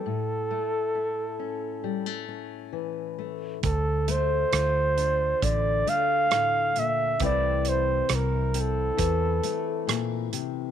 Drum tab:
HH |--------|xxxxxxxx|xxxxxxxx|
SD |--------|--r---r-|--r---r-|
BD |--------|o---o---|o---o---|